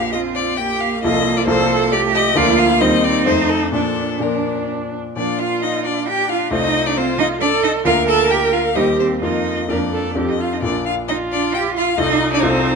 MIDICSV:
0, 0, Header, 1, 5, 480
1, 0, Start_track
1, 0, Key_signature, -2, "major"
1, 0, Tempo, 446761
1, 1130, Time_signature, 3, 2, 24, 8
1, 3511, Tempo, 476569
1, 5431, Tempo, 448096
1, 8791, Tempo, 463679
1, 11671, Tempo, 445765
1, 13460, End_track
2, 0, Start_track
2, 0, Title_t, "Violin"
2, 0, Program_c, 0, 40
2, 0, Note_on_c, 0, 77, 110
2, 128, Note_off_c, 0, 77, 0
2, 134, Note_on_c, 0, 75, 99
2, 220, Note_off_c, 0, 75, 0
2, 372, Note_on_c, 0, 74, 112
2, 615, Note_on_c, 0, 79, 110
2, 631, Note_off_c, 0, 74, 0
2, 862, Note_on_c, 0, 77, 106
2, 878, Note_off_c, 0, 79, 0
2, 1103, Note_off_c, 0, 77, 0
2, 1110, Note_on_c, 0, 75, 127
2, 1471, Note_on_c, 0, 74, 117
2, 1487, Note_off_c, 0, 75, 0
2, 1574, Note_off_c, 0, 74, 0
2, 1580, Note_on_c, 0, 72, 127
2, 2055, Note_off_c, 0, 72, 0
2, 2064, Note_on_c, 0, 74, 127
2, 2150, Note_off_c, 0, 74, 0
2, 2303, Note_on_c, 0, 75, 127
2, 2542, Note_on_c, 0, 74, 127
2, 2558, Note_off_c, 0, 75, 0
2, 2781, Note_on_c, 0, 77, 127
2, 2798, Note_off_c, 0, 74, 0
2, 3019, Note_on_c, 0, 75, 127
2, 3035, Note_off_c, 0, 77, 0
2, 3268, Note_on_c, 0, 74, 127
2, 3284, Note_off_c, 0, 75, 0
2, 3500, Note_off_c, 0, 74, 0
2, 3506, Note_on_c, 0, 72, 113
2, 3743, Note_on_c, 0, 69, 113
2, 3758, Note_off_c, 0, 72, 0
2, 3972, Note_off_c, 0, 69, 0
2, 3978, Note_on_c, 0, 69, 104
2, 4465, Note_on_c, 0, 70, 83
2, 4480, Note_off_c, 0, 69, 0
2, 4951, Note_off_c, 0, 70, 0
2, 5421, Note_on_c, 0, 74, 96
2, 5663, Note_on_c, 0, 77, 106
2, 5679, Note_off_c, 0, 74, 0
2, 5903, Note_off_c, 0, 77, 0
2, 5910, Note_on_c, 0, 75, 103
2, 6150, Note_off_c, 0, 75, 0
2, 6156, Note_on_c, 0, 74, 102
2, 6393, Note_off_c, 0, 74, 0
2, 6399, Note_on_c, 0, 79, 112
2, 6631, Note_on_c, 0, 77, 103
2, 6648, Note_off_c, 0, 79, 0
2, 6868, Note_off_c, 0, 77, 0
2, 6875, Note_on_c, 0, 75, 120
2, 7241, Note_on_c, 0, 74, 111
2, 7257, Note_off_c, 0, 75, 0
2, 7357, Note_on_c, 0, 72, 119
2, 7373, Note_off_c, 0, 74, 0
2, 7590, Note_off_c, 0, 72, 0
2, 7596, Note_on_c, 0, 75, 120
2, 7682, Note_off_c, 0, 75, 0
2, 7828, Note_on_c, 0, 74, 126
2, 8064, Note_off_c, 0, 74, 0
2, 8071, Note_on_c, 0, 75, 118
2, 8156, Note_off_c, 0, 75, 0
2, 8306, Note_on_c, 0, 77, 127
2, 8538, Note_off_c, 0, 77, 0
2, 8545, Note_on_c, 0, 81, 127
2, 8788, Note_on_c, 0, 79, 112
2, 8804, Note_off_c, 0, 81, 0
2, 9017, Note_on_c, 0, 77, 115
2, 9032, Note_off_c, 0, 79, 0
2, 9252, Note_on_c, 0, 75, 111
2, 9268, Note_off_c, 0, 77, 0
2, 9493, Note_off_c, 0, 75, 0
2, 9499, Note_on_c, 0, 72, 91
2, 9582, Note_off_c, 0, 72, 0
2, 9745, Note_on_c, 0, 75, 97
2, 10225, Note_on_c, 0, 74, 83
2, 10241, Note_off_c, 0, 75, 0
2, 10713, Note_off_c, 0, 74, 0
2, 10836, Note_on_c, 0, 75, 86
2, 10963, Note_on_c, 0, 77, 90
2, 10978, Note_off_c, 0, 75, 0
2, 11087, Note_on_c, 0, 75, 95
2, 11103, Note_off_c, 0, 77, 0
2, 11182, Note_off_c, 0, 75, 0
2, 11189, Note_on_c, 0, 74, 100
2, 11421, Note_off_c, 0, 74, 0
2, 11428, Note_on_c, 0, 77, 113
2, 11510, Note_off_c, 0, 77, 0
2, 11661, Note_on_c, 0, 75, 112
2, 11747, Note_off_c, 0, 75, 0
2, 11915, Note_on_c, 0, 74, 109
2, 12146, Note_off_c, 0, 74, 0
2, 12152, Note_on_c, 0, 79, 111
2, 12239, Note_off_c, 0, 79, 0
2, 12395, Note_on_c, 0, 77, 113
2, 12631, Note_on_c, 0, 75, 121
2, 12647, Note_off_c, 0, 77, 0
2, 12991, Note_off_c, 0, 75, 0
2, 13002, Note_on_c, 0, 74, 121
2, 13098, Note_on_c, 0, 72, 121
2, 13114, Note_off_c, 0, 74, 0
2, 13460, Note_off_c, 0, 72, 0
2, 13460, End_track
3, 0, Start_track
3, 0, Title_t, "Cello"
3, 0, Program_c, 1, 42
3, 0, Note_on_c, 1, 67, 95
3, 150, Note_on_c, 1, 65, 78
3, 166, Note_off_c, 1, 67, 0
3, 624, Note_off_c, 1, 65, 0
3, 630, Note_on_c, 1, 67, 104
3, 1114, Note_off_c, 1, 67, 0
3, 1124, Note_on_c, 1, 65, 100
3, 1586, Note_off_c, 1, 65, 0
3, 1592, Note_on_c, 1, 69, 117
3, 2070, Note_on_c, 1, 67, 127
3, 2086, Note_off_c, 1, 69, 0
3, 2545, Note_on_c, 1, 65, 118
3, 2561, Note_off_c, 1, 67, 0
3, 3033, Note_on_c, 1, 63, 117
3, 3049, Note_off_c, 1, 65, 0
3, 3974, Note_off_c, 1, 63, 0
3, 3980, Note_on_c, 1, 62, 81
3, 5168, Note_off_c, 1, 62, 0
3, 5431, Note_on_c, 1, 62, 88
3, 5669, Note_on_c, 1, 65, 89
3, 5685, Note_off_c, 1, 62, 0
3, 5916, Note_on_c, 1, 63, 92
3, 5932, Note_off_c, 1, 65, 0
3, 6162, Note_on_c, 1, 62, 101
3, 6178, Note_off_c, 1, 63, 0
3, 6402, Note_on_c, 1, 67, 119
3, 6418, Note_off_c, 1, 62, 0
3, 6645, Note_off_c, 1, 67, 0
3, 6650, Note_on_c, 1, 65, 86
3, 6879, Note_off_c, 1, 65, 0
3, 6886, Note_on_c, 1, 63, 105
3, 7246, Note_on_c, 1, 62, 97
3, 7262, Note_off_c, 1, 63, 0
3, 7346, Note_off_c, 1, 62, 0
3, 7353, Note_on_c, 1, 60, 108
3, 7438, Note_off_c, 1, 60, 0
3, 7582, Note_on_c, 1, 63, 122
3, 7668, Note_off_c, 1, 63, 0
3, 7821, Note_on_c, 1, 62, 115
3, 7907, Note_off_c, 1, 62, 0
3, 8062, Note_on_c, 1, 63, 108
3, 8148, Note_off_c, 1, 63, 0
3, 8301, Note_on_c, 1, 65, 116
3, 8386, Note_off_c, 1, 65, 0
3, 8540, Note_on_c, 1, 69, 124
3, 8779, Note_off_c, 1, 69, 0
3, 8786, Note_on_c, 1, 67, 103
3, 9001, Note_off_c, 1, 67, 0
3, 9008, Note_on_c, 1, 65, 104
3, 9090, Note_off_c, 1, 65, 0
3, 9252, Note_on_c, 1, 63, 103
3, 9335, Note_off_c, 1, 63, 0
3, 9495, Note_on_c, 1, 60, 83
3, 9728, Note_off_c, 1, 60, 0
3, 9734, Note_on_c, 1, 63, 89
3, 10215, Note_off_c, 1, 63, 0
3, 10227, Note_on_c, 1, 62, 75
3, 10704, Note_off_c, 1, 62, 0
3, 10833, Note_on_c, 1, 63, 72
3, 10883, Note_off_c, 1, 63, 0
3, 10965, Note_on_c, 1, 65, 77
3, 11080, Note_off_c, 1, 65, 0
3, 11086, Note_on_c, 1, 63, 74
3, 11132, Note_off_c, 1, 63, 0
3, 11197, Note_on_c, 1, 62, 92
3, 11422, Note_off_c, 1, 62, 0
3, 11429, Note_on_c, 1, 65, 89
3, 11511, Note_off_c, 1, 65, 0
3, 11669, Note_on_c, 1, 63, 105
3, 11755, Note_off_c, 1, 63, 0
3, 11916, Note_on_c, 1, 62, 108
3, 12161, Note_on_c, 1, 67, 123
3, 12177, Note_off_c, 1, 62, 0
3, 12395, Note_off_c, 1, 67, 0
3, 12402, Note_on_c, 1, 65, 88
3, 12634, Note_off_c, 1, 65, 0
3, 12645, Note_on_c, 1, 63, 117
3, 12984, Note_off_c, 1, 63, 0
3, 12991, Note_on_c, 1, 62, 109
3, 13115, Note_on_c, 1, 60, 108
3, 13131, Note_off_c, 1, 62, 0
3, 13460, Note_off_c, 1, 60, 0
3, 13460, End_track
4, 0, Start_track
4, 0, Title_t, "Viola"
4, 0, Program_c, 2, 41
4, 0, Note_on_c, 2, 58, 74
4, 155, Note_on_c, 2, 60, 79
4, 171, Note_off_c, 2, 58, 0
4, 635, Note_on_c, 2, 58, 95
4, 651, Note_off_c, 2, 60, 0
4, 2079, Note_on_c, 2, 57, 99
4, 2095, Note_off_c, 2, 58, 0
4, 2543, Note_off_c, 2, 57, 0
4, 2549, Note_on_c, 2, 58, 106
4, 3026, Note_on_c, 2, 60, 104
4, 3042, Note_off_c, 2, 58, 0
4, 3510, Note_on_c, 2, 63, 99
4, 3526, Note_off_c, 2, 60, 0
4, 3981, Note_off_c, 2, 63, 0
4, 3987, Note_on_c, 2, 62, 74
4, 4460, Note_off_c, 2, 62, 0
4, 4469, Note_on_c, 2, 62, 73
4, 5209, Note_off_c, 2, 62, 0
4, 5434, Note_on_c, 2, 65, 83
4, 6399, Note_on_c, 2, 62, 83
4, 6415, Note_off_c, 2, 65, 0
4, 6872, Note_off_c, 2, 62, 0
4, 6878, Note_on_c, 2, 63, 99
4, 7362, Note_on_c, 2, 65, 99
4, 7378, Note_off_c, 2, 63, 0
4, 7825, Note_off_c, 2, 65, 0
4, 7831, Note_on_c, 2, 69, 118
4, 8300, Note_off_c, 2, 69, 0
4, 8307, Note_on_c, 2, 70, 114
4, 9242, Note_off_c, 2, 70, 0
4, 9257, Note_on_c, 2, 67, 98
4, 9732, Note_off_c, 2, 67, 0
4, 9740, Note_on_c, 2, 65, 72
4, 10170, Note_off_c, 2, 65, 0
4, 10217, Note_on_c, 2, 70, 86
4, 10300, Note_off_c, 2, 70, 0
4, 10461, Note_on_c, 2, 69, 94
4, 10704, Note_off_c, 2, 69, 0
4, 10710, Note_on_c, 2, 67, 86
4, 10945, Note_off_c, 2, 67, 0
4, 10952, Note_on_c, 2, 65, 72
4, 11190, Note_off_c, 2, 65, 0
4, 11668, Note_on_c, 2, 65, 91
4, 12593, Note_off_c, 2, 65, 0
4, 12637, Note_on_c, 2, 63, 108
4, 13460, Note_off_c, 2, 63, 0
4, 13460, End_track
5, 0, Start_track
5, 0, Title_t, "Grand piano"
5, 0, Program_c, 3, 0
5, 0, Control_c, 3, 64, 127
5, 0, Note_on_c, 3, 34, 67
5, 0, Note_on_c, 3, 53, 61
5, 0, Note_on_c, 3, 65, 59
5, 0, Note_on_c, 3, 70, 59
5, 1077, Note_off_c, 3, 34, 0
5, 1081, Note_off_c, 3, 53, 0
5, 1083, Note_off_c, 3, 65, 0
5, 1086, Note_off_c, 3, 70, 0
5, 1118, Note_on_c, 3, 36, 82
5, 1124, Note_on_c, 3, 53, 66
5, 1129, Note_on_c, 3, 65, 72
5, 1130, Note_on_c, 3, 69, 69
5, 1151, Control_c, 3, 64, 0
5, 1294, Control_c, 3, 64, 127
5, 1561, Note_off_c, 3, 36, 0
5, 1566, Note_off_c, 3, 53, 0
5, 1574, Note_off_c, 3, 65, 0
5, 1576, Note_off_c, 3, 69, 0
5, 1577, Note_on_c, 3, 36, 93
5, 1582, Note_on_c, 3, 53, 79
5, 1590, Note_on_c, 3, 65, 80
5, 1592, Note_on_c, 3, 69, 79
5, 2508, Note_off_c, 3, 36, 0
5, 2511, Note_off_c, 3, 53, 0
5, 2515, Note_off_c, 3, 65, 0
5, 2516, Note_off_c, 3, 69, 0
5, 2525, Note_on_c, 3, 38, 92
5, 2533, Note_on_c, 3, 53, 79
5, 2536, Note_on_c, 3, 65, 75
5, 2545, Note_on_c, 3, 70, 77
5, 2568, Control_c, 3, 64, 0
5, 2760, Control_c, 3, 64, 127
5, 3002, Note_off_c, 3, 38, 0
5, 3006, Note_off_c, 3, 53, 0
5, 3008, Note_off_c, 3, 65, 0
5, 3012, Note_off_c, 3, 70, 0
5, 3012, Note_on_c, 3, 39, 91
5, 3016, Note_on_c, 3, 55, 82
5, 3021, Note_on_c, 3, 63, 81
5, 3026, Note_on_c, 3, 72, 88
5, 3051, Control_c, 3, 64, 0
5, 3223, Control_c, 3, 64, 127
5, 3488, Note_off_c, 3, 39, 0
5, 3490, Note_off_c, 3, 55, 0
5, 3492, Note_off_c, 3, 63, 0
5, 3495, Note_off_c, 3, 72, 0
5, 3504, Note_on_c, 3, 41, 77
5, 3506, Note_on_c, 3, 57, 74
5, 3512, Note_on_c, 3, 63, 67
5, 3515, Note_on_c, 3, 72, 74
5, 3531, Control_c, 3, 64, 0
5, 3713, Control_c, 3, 64, 127
5, 3963, Note_on_c, 3, 46, 69
5, 3969, Note_off_c, 3, 41, 0
5, 3970, Note_off_c, 3, 57, 0
5, 3972, Note_on_c, 3, 53, 59
5, 3973, Note_off_c, 3, 63, 0
5, 3975, Note_off_c, 3, 72, 0
5, 3975, Note_on_c, 3, 62, 57
5, 3979, Note_on_c, 3, 74, 55
5, 4007, Control_c, 3, 64, 0
5, 4164, Control_c, 3, 64, 127
5, 4426, Note_off_c, 3, 46, 0
5, 4438, Note_off_c, 3, 53, 0
5, 4439, Note_off_c, 3, 62, 0
5, 4441, Note_on_c, 3, 46, 70
5, 4445, Note_off_c, 3, 74, 0
5, 4453, Note_on_c, 3, 53, 57
5, 4454, Note_on_c, 3, 62, 58
5, 4460, Note_on_c, 3, 74, 58
5, 5389, Note_off_c, 3, 46, 0
5, 5395, Note_off_c, 3, 53, 0
5, 5395, Note_off_c, 3, 62, 0
5, 5399, Note_off_c, 3, 74, 0
5, 5418, Note_on_c, 3, 46, 63
5, 5421, Note_on_c, 3, 53, 49
5, 5425, Note_on_c, 3, 62, 52
5, 5428, Note_on_c, 3, 74, 54
5, 5451, Control_c, 3, 64, 0
5, 5636, Control_c, 3, 64, 127
5, 6834, Note_off_c, 3, 46, 0
5, 6836, Note_off_c, 3, 53, 0
5, 6838, Note_off_c, 3, 62, 0
5, 6840, Note_off_c, 3, 74, 0
5, 6860, Note_on_c, 3, 36, 81
5, 6868, Note_on_c, 3, 57, 64
5, 6877, Note_on_c, 3, 65, 66
5, 6877, Note_on_c, 3, 72, 61
5, 6905, Control_c, 3, 64, 0
5, 7042, Control_c, 3, 64, 127
5, 8255, Note_off_c, 3, 36, 0
5, 8259, Note_off_c, 3, 57, 0
5, 8264, Note_off_c, 3, 65, 0
5, 8264, Note_off_c, 3, 72, 0
5, 8292, Note_on_c, 3, 38, 84
5, 8298, Note_on_c, 3, 58, 71
5, 8300, Note_on_c, 3, 65, 67
5, 8309, Note_on_c, 3, 70, 70
5, 8332, Control_c, 3, 64, 0
5, 8502, Control_c, 3, 64, 127
5, 9226, Note_off_c, 3, 38, 0
5, 9229, Note_off_c, 3, 58, 0
5, 9230, Note_off_c, 3, 65, 0
5, 9234, Note_off_c, 3, 70, 0
5, 9252, Note_on_c, 3, 39, 75
5, 9256, Note_on_c, 3, 55, 63
5, 9261, Note_on_c, 3, 67, 65
5, 9266, Note_on_c, 3, 72, 62
5, 9283, Control_c, 3, 64, 0
5, 9462, Control_c, 3, 64, 127
5, 9725, Note_off_c, 3, 39, 0
5, 9727, Note_off_c, 3, 55, 0
5, 9729, Note_off_c, 3, 67, 0
5, 9731, Note_on_c, 3, 41, 61
5, 9732, Note_off_c, 3, 72, 0
5, 9736, Note_on_c, 3, 58, 56
5, 9742, Note_on_c, 3, 65, 53
5, 9744, Note_on_c, 3, 70, 56
5, 9764, Control_c, 3, 64, 0
5, 9964, Control_c, 3, 64, 127
5, 10200, Note_off_c, 3, 41, 0
5, 10207, Note_off_c, 3, 58, 0
5, 10213, Note_off_c, 3, 70, 0
5, 10214, Note_off_c, 3, 65, 0
5, 10215, Note_on_c, 3, 41, 69
5, 10222, Note_on_c, 3, 58, 57
5, 10229, Note_on_c, 3, 65, 53
5, 10229, Note_on_c, 3, 70, 52
5, 10682, Note_off_c, 3, 41, 0
5, 10694, Note_off_c, 3, 65, 0
5, 10697, Note_off_c, 3, 58, 0
5, 10698, Note_on_c, 3, 41, 65
5, 10700, Note_off_c, 3, 70, 0
5, 10701, Note_on_c, 3, 60, 54
5, 10709, Note_on_c, 3, 65, 53
5, 10715, Note_on_c, 3, 69, 52
5, 10736, Control_c, 3, 64, 0
5, 10934, Control_c, 3, 64, 127
5, 11175, Note_off_c, 3, 41, 0
5, 11176, Note_off_c, 3, 60, 0
5, 11181, Note_off_c, 3, 65, 0
5, 11183, Note_off_c, 3, 69, 0
5, 11184, Note_on_c, 3, 34, 68
5, 11193, Note_on_c, 3, 62, 58
5, 11196, Note_on_c, 3, 65, 63
5, 11198, Note_on_c, 3, 70, 58
5, 11217, Control_c, 3, 64, 0
5, 11359, Control_c, 3, 64, 127
5, 12587, Note_off_c, 3, 34, 0
5, 12591, Note_off_c, 3, 62, 0
5, 12593, Note_off_c, 3, 65, 0
5, 12594, Note_off_c, 3, 70, 0
5, 12622, Note_on_c, 3, 36, 90
5, 12625, Note_on_c, 3, 63, 72
5, 12633, Note_on_c, 3, 65, 67
5, 12639, Note_on_c, 3, 69, 71
5, 12659, Control_c, 3, 64, 0
5, 12853, Control_c, 3, 64, 127
5, 13084, Note_off_c, 3, 36, 0
5, 13093, Note_off_c, 3, 63, 0
5, 13096, Note_off_c, 3, 65, 0
5, 13100, Note_off_c, 3, 69, 0
5, 13100, Note_on_c, 3, 36, 98
5, 13109, Note_on_c, 3, 63, 82
5, 13112, Note_on_c, 3, 65, 86
5, 13120, Note_on_c, 3, 69, 80
5, 13460, Note_off_c, 3, 36, 0
5, 13460, Note_off_c, 3, 63, 0
5, 13460, Note_off_c, 3, 65, 0
5, 13460, Note_off_c, 3, 69, 0
5, 13460, End_track
0, 0, End_of_file